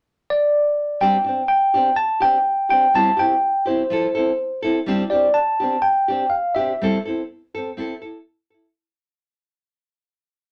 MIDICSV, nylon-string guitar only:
0, 0, Header, 1, 3, 480
1, 0, Start_track
1, 0, Key_signature, 0, "major"
1, 0, Tempo, 483481
1, 1012, Time_signature, 4, 2, 24, 8
1, 10441, End_track
2, 0, Start_track
2, 0, Title_t, "Nylon-string guitar"
2, 0, Program_c, 0, 24
2, 998, Note_on_c, 0, 55, 67
2, 1006, Note_on_c, 0, 60, 69
2, 1013, Note_on_c, 0, 62, 69
2, 1016, Note_on_c, 0, 67, 77
2, 1149, Note_off_c, 0, 55, 0
2, 1153, Note_off_c, 0, 60, 0
2, 1157, Note_off_c, 0, 62, 0
2, 1158, Note_off_c, 0, 67, 0
2, 1253, Note_on_c, 0, 62, 41
2, 1275, Note_on_c, 0, 60, 37
2, 1396, Note_off_c, 0, 62, 0
2, 1407, Note_off_c, 0, 60, 0
2, 1726, Note_on_c, 0, 67, 52
2, 1738, Note_on_c, 0, 62, 48
2, 1754, Note_on_c, 0, 60, 44
2, 1872, Note_off_c, 0, 67, 0
2, 1878, Note_off_c, 0, 62, 0
2, 1886, Note_off_c, 0, 60, 0
2, 2188, Note_on_c, 0, 67, 54
2, 2207, Note_on_c, 0, 62, 44
2, 2222, Note_on_c, 0, 60, 40
2, 2343, Note_off_c, 0, 67, 0
2, 2352, Note_off_c, 0, 62, 0
2, 2360, Note_off_c, 0, 60, 0
2, 2672, Note_on_c, 0, 67, 44
2, 2692, Note_on_c, 0, 62, 44
2, 2706, Note_on_c, 0, 60, 44
2, 2825, Note_off_c, 0, 67, 0
2, 2835, Note_off_c, 0, 62, 0
2, 2842, Note_off_c, 0, 60, 0
2, 2918, Note_on_c, 0, 55, 58
2, 2927, Note_on_c, 0, 60, 73
2, 2934, Note_on_c, 0, 64, 74
2, 2942, Note_on_c, 0, 67, 67
2, 3068, Note_off_c, 0, 55, 0
2, 3072, Note_off_c, 0, 60, 0
2, 3076, Note_off_c, 0, 64, 0
2, 3080, Note_off_c, 0, 67, 0
2, 3144, Note_on_c, 0, 67, 54
2, 3166, Note_on_c, 0, 64, 45
2, 3175, Note_on_c, 0, 60, 42
2, 3301, Note_off_c, 0, 67, 0
2, 3312, Note_off_c, 0, 64, 0
2, 3316, Note_off_c, 0, 60, 0
2, 3629, Note_on_c, 0, 67, 53
2, 3649, Note_on_c, 0, 64, 48
2, 3661, Note_on_c, 0, 60, 46
2, 3783, Note_off_c, 0, 67, 0
2, 3793, Note_off_c, 0, 64, 0
2, 3799, Note_off_c, 0, 60, 0
2, 3874, Note_on_c, 0, 53, 67
2, 3891, Note_on_c, 0, 64, 70
2, 3899, Note_on_c, 0, 69, 77
2, 4026, Note_off_c, 0, 53, 0
2, 4035, Note_off_c, 0, 64, 0
2, 4039, Note_off_c, 0, 69, 0
2, 4117, Note_on_c, 0, 69, 55
2, 4139, Note_on_c, 0, 64, 43
2, 4153, Note_on_c, 0, 60, 40
2, 4268, Note_off_c, 0, 69, 0
2, 4279, Note_off_c, 0, 64, 0
2, 4286, Note_off_c, 0, 60, 0
2, 4591, Note_on_c, 0, 69, 58
2, 4610, Note_on_c, 0, 64, 52
2, 4625, Note_on_c, 0, 60, 44
2, 4746, Note_off_c, 0, 69, 0
2, 4755, Note_off_c, 0, 64, 0
2, 4762, Note_off_c, 0, 60, 0
2, 4828, Note_on_c, 0, 55, 71
2, 4842, Note_on_c, 0, 60, 78
2, 4847, Note_on_c, 0, 62, 72
2, 4854, Note_on_c, 0, 67, 86
2, 4984, Note_off_c, 0, 55, 0
2, 4991, Note_off_c, 0, 60, 0
2, 4994, Note_off_c, 0, 62, 0
2, 4997, Note_off_c, 0, 67, 0
2, 5069, Note_on_c, 0, 67, 48
2, 5089, Note_on_c, 0, 62, 42
2, 5107, Note_on_c, 0, 60, 44
2, 5225, Note_off_c, 0, 67, 0
2, 5235, Note_off_c, 0, 62, 0
2, 5244, Note_off_c, 0, 60, 0
2, 5558, Note_on_c, 0, 67, 55
2, 5574, Note_on_c, 0, 62, 50
2, 5590, Note_on_c, 0, 60, 48
2, 5710, Note_off_c, 0, 67, 0
2, 5718, Note_off_c, 0, 62, 0
2, 5726, Note_off_c, 0, 60, 0
2, 6038, Note_on_c, 0, 67, 50
2, 6054, Note_on_c, 0, 62, 47
2, 6068, Note_on_c, 0, 60, 38
2, 6191, Note_off_c, 0, 67, 0
2, 6199, Note_off_c, 0, 62, 0
2, 6206, Note_off_c, 0, 60, 0
2, 6511, Note_on_c, 0, 67, 57
2, 6531, Note_on_c, 0, 62, 39
2, 6545, Note_on_c, 0, 60, 39
2, 6668, Note_off_c, 0, 67, 0
2, 6678, Note_off_c, 0, 62, 0
2, 6685, Note_off_c, 0, 60, 0
2, 6766, Note_on_c, 0, 55, 71
2, 6776, Note_on_c, 0, 60, 63
2, 6784, Note_on_c, 0, 64, 70
2, 6786, Note_on_c, 0, 69, 72
2, 6916, Note_off_c, 0, 55, 0
2, 6921, Note_off_c, 0, 60, 0
2, 6925, Note_off_c, 0, 64, 0
2, 6926, Note_off_c, 0, 69, 0
2, 7003, Note_on_c, 0, 69, 50
2, 7022, Note_on_c, 0, 64, 42
2, 7035, Note_on_c, 0, 60, 41
2, 7155, Note_off_c, 0, 69, 0
2, 7164, Note_off_c, 0, 64, 0
2, 7170, Note_off_c, 0, 60, 0
2, 7491, Note_on_c, 0, 69, 68
2, 7521, Note_on_c, 0, 60, 48
2, 7639, Note_off_c, 0, 69, 0
2, 7654, Note_off_c, 0, 60, 0
2, 7714, Note_on_c, 0, 60, 77
2, 7724, Note_on_c, 0, 64, 83
2, 7739, Note_on_c, 0, 69, 82
2, 7871, Note_off_c, 0, 60, 0
2, 7876, Note_off_c, 0, 64, 0
2, 7883, Note_off_c, 0, 69, 0
2, 7957, Note_on_c, 0, 69, 56
2, 7991, Note_on_c, 0, 64, 38
2, 8112, Note_off_c, 0, 69, 0
2, 8129, Note_off_c, 0, 64, 0
2, 8443, Note_on_c, 0, 69, 58
2, 8480, Note_on_c, 0, 64, 42
2, 8595, Note_off_c, 0, 69, 0
2, 8614, Note_off_c, 0, 64, 0
2, 10441, End_track
3, 0, Start_track
3, 0, Title_t, "Muted nylon-string guitar strokes"
3, 1235, Note_on_c, 9, 29, 48
3, 1335, Note_off_c, 9, 29, 0
3, 3884, Note_on_c, 9, 29, 68
3, 3984, Note_off_c, 9, 29, 0
3, 7504, Note_on_c, 9, 29, 49
3, 7603, Note_off_c, 9, 29, 0
3, 10441, End_track
0, 0, End_of_file